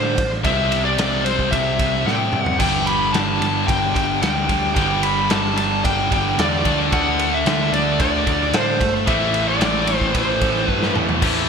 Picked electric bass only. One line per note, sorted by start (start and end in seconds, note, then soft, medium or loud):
0.00 0.16 A2 loud
0.18 0.43 A1 medium
0.45 0.95 C2 loud
0.98 1.49 C2 loud
1.52 2.03 C2 medium
2.06 2.31 A2 loud
2.33 2.58 G2 medium
2.60 3.11 G1 loud
3.13 3.39 G1 loud
3.41 3.66 G1 medium
3.68 3.94 G1 loud
3.95 4.20 G1 medium
4.22 4.47 D2 loud
4.49 4.75 D2 medium
4.76 5.27 G1 loud
5.31 5.81 G1 loud
5.84 6.35 G1 loud
6.38 6.63 E2 loud
6.65 6.90 D2 loud
6.92 7.42 D2 loud
7.46 7.71 D2 loud
7.73 7.98 D2 loud
8.00 8.25 D2 medium
8.27 8.52 D2 medium
8.53 8.78 A2 loud
8.80 9.06 G1 loud
9.07 9.58 A1 loud
9.60 10.11 A1 loud
10.15 10.65 A1 loud
10.68 10.94 G2 loud
10.95 11.20 E2 medium
11.22 11.47 A1 loud